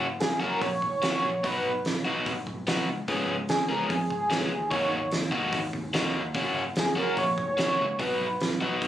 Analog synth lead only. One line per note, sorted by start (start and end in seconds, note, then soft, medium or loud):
0.20 0.41 G#4 medium
0.40 0.63 A#4 medium
0.62 1.48 C#5 loud
1.46 1.86 B4 medium
3.49 3.70 G#4 medium
3.68 3.91 A#4 medium
3.90 4.70 G#4 loud
4.70 5.09 C#5 loud
6.79 6.97 G#4 medium
6.98 7.17 A#4 medium
7.18 8.01 C#5 loud
7.99 8.41 B4 medium